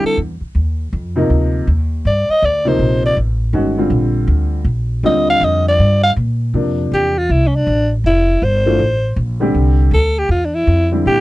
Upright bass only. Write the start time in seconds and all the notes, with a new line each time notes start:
0.04 muted upright bass stroke
0.17 E2
0.41 muted upright bass stroke
0.55 D#2
0.93 F2
1.30 D2
1.67 D#2
2.05 G2
2.29 muted upright bass stroke
2.42 D2
2.79 A#1
3.17 A1
3.53 G1
3.90 A#1
4.27 D2
4.65 A#1
5.03 D#2
5.41 F2
5.79 G2
6.16 A#2
6.54 F2
6.92 E2
7.29 C2
7.67 A1
8.04 F1
8.42 G1
8.79 A1
9.16 A#1
9.54 C2
9.91 D2
10.29 E2
10.67 F2
11.06 A2